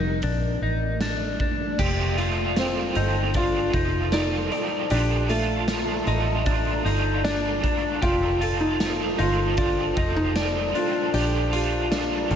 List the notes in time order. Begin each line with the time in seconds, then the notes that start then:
Already playing: F1 F3 C4 D#4 A#4
0.22 A#1 A3 A#3 D4 D5, kick, closed hi-hat
0.62 A1 D#4
1.01 D4, snare, closed hi-hat
1.40 D4, kick
1.79 F1 F2 C3 F3 A3 C4 F4 G4 A4 C5 A5, kick, crash
2.16 A3 C4 F4, closed hi-hat
2.22 F3
2.56 C3 F3 A3 C4 F4, snare, closed hi-hat, tambourine
2.94 G1 A3 C4 D#4 F4, closed hi-hat
2.99 F3
3.33 F3 A3 C4 D4 F4, kick, closed hi-hat
3.39 F4
3.72 F1 A3 C4 D#4 F4, kick, closed hi-hat
3.77 F3
4.12 F2 C3 F3 A3 C4 D#4 F4 D5, snare, closed hi-hat, tambourine
4.51 A3 C4 F4 D5, closed hi-hat
4.56 F3
4.89 A#1 A#2 F3 A3 D4 G4 D5 A#5, closed hi-hat
4.93 D4 F4
5.29 A3 D4 F4, closed hi-hat
5.68 A#2 F3 A3 D4 F4, snare, closed hi-hat, tambourine
6.07 A1 D4 D#4 F4, closed hi-hat
6.12 A3
6.45 F3 A3 D4, kick, closed hi-hat
6.50 D4 F4
6.85 G1 D4 D#4 F4, closed hi-hat
6.91 A3
7.24 A#2 F3 A3 D4, snare, closed hi-hat, tambourine
7.28 D4 F4
7.63 D4 F4, kick, closed hi-hat
7.69 A3
8.02 F1 F2 C3 F3 A3 C4 F4 G4 A4 C5, kick, closed hi-hat
8.06 F4
8.41 A3 C4 F4 A4, closed hi-hat
8.60 D#4
8.80 F2 C3 F3 A3 C4 F4, snare, closed hi-hat, tambourine
9.18 G1 C4 D#4 F4, closed hi-hat
9.57 F3 A3 D4 F4, kick, closed hi-hat
9.62 C4 F4
9.96 F1 A3 C4 D#4 F4, kick, closed hi-hat
10.02 F3
10.16 D#4
10.36 C3 F3 A3 C4 F4 D5, snare, closed hi-hat, tambourine
10.74 A3 C4 D4 F4, closed hi-hat
10.80 F3
11.13 A#1 A#2 F3 A3 D4 F4 G4 D5 A#5, closed hi-hat
11.52 D4 F4 G4, closed hi-hat
11.58 A3
11.91 A#2 F3 A3 D4 F4, snare, closed hi-hat, tambourine
12.30 A1 D#3 F4, closed hi-hat